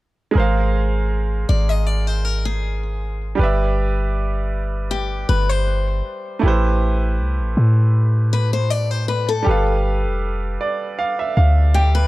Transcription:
0.31 3.33 G#3 medium
0.31 3.34 G#4 medium
0.35 1.45 G#1 loud
0.35 3.35 A#4 medium
0.35 3.36 C5 medium
0.40 3.37 F5 medium
1.49 3.35 G#1 loud
1.49 1.69 D5 medium
1.69 1.86 D#5 medium
1.86 2.07 D5 medium
2.07 2.25 C5 medium
2.25 2.44 A#4 medium
2.45 3.35 G#4 medium
3.35 5.25 G1 loud
3.35 6.37 G3 medium
3.35 6.38 G4 medium
3.39 6.39 B4 medium
3.39 6.40 D5 medium
3.44 6.41 E5 medium
4.91 5.27 G4 medium
5.29 6.02 G1 loud
5.29 5.49 B4 medium
5.49 6.39 C5 medium
6.39 9.41 A3 medium
6.39 9.42 E4 medium
6.43 7.21 A1 loud
6.43 9.43 G4 medium
6.43 9.44 B4 medium
6.48 9.45 C5 medium
7.19 7.41 C2 medium
7.40 7.56 A1 medium
7.57 9.43 A2 medium
8.33 8.52 B4 medium
8.53 8.70 C5 medium
8.70 8.91 D5 medium
8.91 9.08 C5 medium
9.08 9.28 B4 medium
9.29 9.65 A4 medium
9.43 12.07 G3 medium
9.43 12.07 G4 medium
9.47 10.07 G1 loud
9.47 12.07 A4 medium
9.47 12.07 B4 medium
9.51 10.97 F5 medium
10.06 10.58 F1 loud
10.61 10.96 D5 medium
10.99 11.18 F5 medium
11.19 11.35 E5 medium
11.37 12.07 D2 loud
11.37 11.72 F5 medium
11.74 11.94 G4 medium
11.74 12.07 G5 medium
11.95 12.07 B4 medium

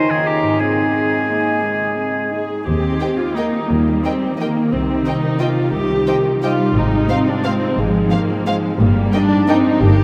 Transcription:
0.00 0.60 D#3 medium
0.00 0.22 C4 soft
0.00 0.17 D#4 soft
0.00 0.61 D#4 soft
0.00 0.27 G#4 soft
0.00 0.12 C5 medium
0.00 0.29 G#5 soft
0.10 0.53 D#3 soft
0.10 0.29 G#4 medium
0.14 0.55 A#3 soft
0.19 0.50 D#4 soft
0.23 0.61 G4 medium
0.23 0.60 A#4 soft
0.27 0.61 A#5 soft
0.43 2.58 G#2 soft
0.47 2.61 C4 soft
0.52 2.99 D#4 soft
0.56 2.65 G#4 soft
0.56 2.49 G#4 soft
0.56 2.49 G#5 soft
0.61 2.46 G#3 soft
0.61 0.91 C4 soft
0.94 1.31 C4 soft
1.29 1.64 A#3 soft
1.63 1.98 G#3 soft
1.96 2.33 C4 soft
2.31 2.66 D#4 soft
2.31 2.63 G#4 soft
2.65 2.93 D#2 soft
2.65 3.69 D#3 soft
2.65 3.32 C4 soft
2.65 3.17 G4 medium
2.83 3.85 A#3 soft
3.00 3.52 D#4 soft
3.00 3.09 A#4 soft
3.00 3.09 D#5 soft
3.00 3.08 G5 soft
3.18 3.36 F4 medium
3.18 4.20 G4 soft
3.36 3.70 A#3 soft
3.36 3.70 D#4 medium
3.36 4.38 A#4 soft
3.36 3.45 A#4 soft
3.36 3.45 D#5 soft
3.36 3.45 G5 soft
3.53 4.03 D#4 soft
3.69 3.96 D#2 soft
3.69 4.74 D#3 soft
3.69 4.38 G3 soft
3.69 4.03 A#3 medium
3.86 4.74 A#3 soft
4.03 4.39 C4 medium
4.03 4.55 D#4 soft
4.03 4.13 A#4 soft
4.03 4.12 D#5 soft
4.03 4.13 G5 soft
4.22 5.41 G4 soft
4.39 6.07 D#3 soft
4.39 4.72 A#3 medium
4.39 4.74 A#4 soft
4.39 4.48 A#4 soft
4.39 4.48 D#5 soft
4.39 4.49 G5 soft
4.57 5.23 D#4 soft
4.72 4.99 C2 soft
4.72 5.74 C3 soft
4.72 5.06 C4 medium
4.90 5.90 G3 soft
5.06 5.57 C4 soft
5.06 5.41 D#4 medium
5.06 5.14 C5 soft
5.06 5.14 D#5 soft
5.06 5.16 G5 soft
5.24 6.24 D#4 soft
5.39 5.74 F4 medium
5.39 6.42 G4 soft
5.39 5.48 C5 soft
5.39 5.48 D#5 soft
5.39 5.47 G5 soft
5.58 6.07 C4 soft
5.73 6.00 C2 medium
5.73 6.78 C3 soft
5.73 6.24 G4 medium
5.91 6.78 G3 soft
6.08 6.42 D#3 soft
6.08 6.59 C4 soft
6.08 6.16 C5 soft
6.08 6.16 D#5 soft
6.08 6.16 G5 soft
6.26 6.77 D#4 soft
6.42 6.75 G3 soft
6.42 6.73 F4 medium
6.42 6.78 G4 soft
6.42 6.51 C5 soft
6.42 6.52 D#5 soft
6.42 6.51 G5 soft
6.60 7.09 C4 soft
6.76 7.02 G#1 medium
6.76 7.77 G#2 medium
6.76 7.10 G#3 medium
6.76 7.27 D#4 medium
6.93 7.93 G#3 soft
7.09 7.45 C4 medium
7.09 7.61 C4 soft
7.09 7.17 C5 soft
7.09 7.18 F5 soft
7.27 7.45 D4 medium
7.27 8.28 F4 soft
7.44 7.78 G#3 medium
7.44 7.78 C4 medium
7.44 8.45 G#4 soft
7.44 7.52 C5 soft
7.44 7.53 F5 soft
7.62 8.10 C4 soft
7.77 8.04 G#1 medium
7.77 8.81 G#2 medium
7.77 8.45 F3 medium
7.77 8.12 G#3 medium
7.95 8.81 G#3 soft
8.11 8.46 A#3 medium
8.11 8.62 C4 soft
8.11 8.19 C5 soft
8.11 8.19 F5 soft
8.11 8.20 F5 soft
8.29 8.81 F4 soft
8.46 8.79 F3 medium
8.46 8.80 G#3 medium
8.46 8.81 G#4 soft
8.46 8.56 C5 soft
8.46 8.55 F5 soft
8.46 8.56 F5 soft
8.64 8.81 C4 soft
8.79 9.06 G1 medium
8.79 9.79 G2 medium
8.79 9.48 G3 medium
8.79 9.12 A#3 medium
8.97 9.96 G3 soft
9.13 9.48 D4 medium
9.13 9.64 D#4 soft
9.13 9.21 A#4 soft
9.13 9.22 D#5 soft
9.13 9.21 G5 soft
9.31 10.04 G4 soft
9.47 9.80 C4 medium
9.47 9.80 D#4 medium
9.47 9.56 A#4 soft
9.47 10.04 A#4 soft
9.47 9.56 D#5 soft
9.47 9.57 G5 soft
9.65 10.04 D#4 soft
9.80 10.04 G1 medium
9.80 10.04 G2 medium
9.80 10.04 A#3 medium
9.80 10.04 G4 medium
9.97 10.04 G3 soft

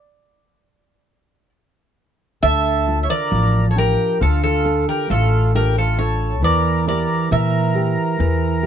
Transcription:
0.00 1.49 D5 medium
2.43 3.05 D2 loud
2.43 3.29 D3 medium
2.43 2.99 A4 loud
2.43 2.99 E5 loud
2.87 3.59 D4 soft
2.87 3.59 F4 soft
3.03 3.09 C#5 medium
3.03 3.10 E5 medium
3.10 3.66 A#4 medium
3.10 3.66 D5 loud
3.31 3.94 A1 medium
3.31 4.18 F3 medium
3.70 3.76 A4 medium
3.70 3.77 C#5 medium
3.76 4.47 D4 soft
3.76 4.47 F4 soft
3.76 4.18 G4 medium
3.76 4.22 A#4 medium
4.20 4.83 D2 medium
4.20 5.07 D3 medium
4.20 4.41 F4 medium
4.20 4.42 A4 medium
4.43 4.85 F4 medium
4.43 4.88 A4 medium
4.65 5.36 D4 soft
4.65 5.36 F4 soft
4.65 5.36 A4 medium
4.88 5.09 G4 medium
4.88 5.09 A#4 medium
5.10 6.43 A1 medium
5.10 5.96 A3 medium
5.10 5.51 F4 medium
5.10 5.52 A4 medium
5.54 5.97 D4 soft
5.54 5.98 F4 soft
5.54 5.76 G4 medium
5.54 5.98 A4 soft
5.54 5.76 A#4 medium
5.78 5.98 F4 medium
5.78 5.98 A4 medium
5.98 6.34 D4 medium
5.98 6.34 F4 soft
5.98 6.34 A4 medium
5.98 6.41 A4 medium
5.98 6.44 C#5 medium
6.42 7.05 E2 loud
6.42 7.29 E3 medium
6.42 6.85 A#4 medium
6.42 6.85 D5 medium
6.87 7.58 E4 medium
6.87 7.58 G4 soft
6.87 7.58 A#4 medium
6.87 7.29 A#4 medium
6.87 7.29 D5 medium
7.31 7.94 A#2 medium
7.31 8.17 E3 medium
7.31 8.66 A#4 medium
7.31 8.66 E5 medium
7.74 8.46 E4 soft
7.74 8.46 G4 soft
7.74 8.46 A#4 medium
8.19 8.66 E2 medium
8.19 8.66 E3 medium
8.62 8.66 E4 soft
8.62 8.66 G4 soft
8.62 8.66 A#4 medium

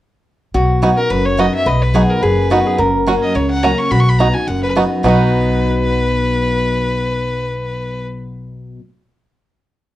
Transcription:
0.54 0.90 B1 medium
0.54 1.08 B2 medium
0.54 1.63 F#4 medium
0.82 0.97 F#3 medium
0.82 0.97 B3 medium
0.82 0.89 B3 medium
0.82 0.97 D#4 medium
0.82 0.89 D#4 medium
0.82 0.89 F#4 medium
0.82 0.96 F#4 medium
0.97 1.10 D#4 soft
0.97 1.10 F#4 medium
0.97 1.12 A#4 medium
1.10 1.46 F#1 medium
1.10 1.64 F#2 medium
1.10 1.27 B4 medium
1.26 1.41 C#5 medium
1.38 1.65 F#3 medium
1.38 1.65 B3 medium
1.38 1.45 B3 medium
1.38 1.65 D#4 medium
1.38 1.45 D#4 medium
1.38 1.66 F#4 medium
1.38 1.46 F#4 medium
1.38 1.54 D#5 medium
1.54 1.69 E5 loud
1.66 2.02 B1 medium
1.66 2.20 B2 medium
1.66 2.24 B4 loud
1.66 1.84 D#5 medium
1.82 1.97 B4 medium
1.94 2.21 F#3 medium
1.94 2.21 B3 medium
1.94 2.01 B3 medium
1.94 2.22 D#4 medium
1.94 2.02 D#4 medium
1.94 2.22 F#4 loud
1.94 2.02 F#4 medium
1.94 2.12 G#4 medium
2.10 2.24 A#4 medium
2.22 2.59 F#1 medium
2.22 2.76 F#2 medium
2.22 2.49 G#4 medium
2.22 2.79 B4 medium
2.50 2.77 F#3 medium
2.50 2.78 B3 medium
2.50 2.58 B3 medium
2.50 2.78 D#4 medium
2.50 2.58 D#4 medium
2.50 2.65 F#4 medium
2.50 2.78 F#4 medium
2.50 2.58 F#4 medium
2.66 2.78 G#4 medium
2.78 3.15 F#1 medium
2.78 3.32 F#2 medium
2.78 3.95 A#4 loud
3.07 3.34 F#3 medium
3.07 3.34 A#3 medium
3.07 3.14 C#4 medium
3.07 3.34 C#4 medium
3.07 3.14 F#4 medium
3.07 3.34 F#4 loud
3.22 3.37 D#5 medium
3.35 3.72 C#2 medium
3.35 3.89 C#3 medium
3.35 3.50 C#5 medium
3.50 3.65 F#5 loud
3.63 3.90 F#3 medium
3.63 3.90 A#3 medium
3.63 3.70 C#4 medium
3.63 3.91 C#4 loud
3.63 3.70 F#4 medium
3.63 3.91 F#4 medium
3.63 3.80 A#5 medium
3.79 3.92 C#6 loud
3.91 4.28 B1 medium
3.91 4.45 B2 medium
3.91 4.87 F#4 medium
3.91 4.02 B5 medium
4.00 4.11 C#6 loud
4.09 4.20 B5 medium
4.19 4.34 F#3 medium
4.19 4.34 B3 medium
4.19 4.27 B3 medium
4.19 4.34 D#4 medium
4.19 4.27 D#4 medium
4.19 4.33 F#4 medium
4.19 4.27 F#4 medium
4.19 4.35 A#5 medium
4.34 4.48 D#4 soft
4.34 4.47 F#4 medium
4.34 4.49 G#5 medium
4.47 4.84 F#1 medium
4.47 5.01 F#2 medium
4.47 4.62 F#5 medium
4.63 4.71 B4 loud
4.75 5.03 F#3 medium
4.75 5.03 B3 medium
4.75 4.83 B3 medium
4.75 5.03 D#4 medium
4.75 4.83 D#4 medium
4.75 5.03 F#4 medium
4.75 4.83 F#4 medium
5.03 8.75 B1 medium
5.03 8.78 B2 medium
5.03 8.79 F#3 medium
5.03 8.79 B3 medium
5.03 8.75 B3 medium
5.03 8.79 D#4 medium
5.03 8.76 D#4 medium
5.03 8.75 F#4 medium
5.03 8.79 F#4 medium
5.03 8.05 B4 medium
5.08 8.77 F#4 medium

